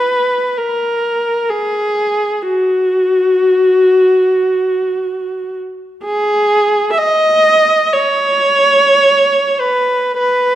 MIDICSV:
0, 0, Header, 1, 2, 480
1, 0, Start_track
1, 0, Tempo, 500000
1, 10128, End_track
2, 0, Start_track
2, 0, Title_t, "Viola"
2, 0, Program_c, 0, 41
2, 0, Note_on_c, 0, 71, 50
2, 552, Note_on_c, 0, 70, 47
2, 561, Note_off_c, 0, 71, 0
2, 1430, Note_on_c, 0, 68, 54
2, 1435, Note_off_c, 0, 70, 0
2, 2319, Note_on_c, 0, 66, 48
2, 2326, Note_off_c, 0, 68, 0
2, 5347, Note_off_c, 0, 66, 0
2, 5801, Note_on_c, 0, 68, 69
2, 6588, Note_off_c, 0, 68, 0
2, 6635, Note_on_c, 0, 76, 57
2, 6691, Note_off_c, 0, 76, 0
2, 6702, Note_on_c, 0, 75, 81
2, 7610, Note_off_c, 0, 75, 0
2, 7615, Note_on_c, 0, 73, 72
2, 9206, Note_off_c, 0, 73, 0
2, 9212, Note_on_c, 0, 71, 58
2, 9753, Note_off_c, 0, 71, 0
2, 9765, Note_on_c, 0, 71, 65
2, 10128, Note_off_c, 0, 71, 0
2, 10128, End_track
0, 0, End_of_file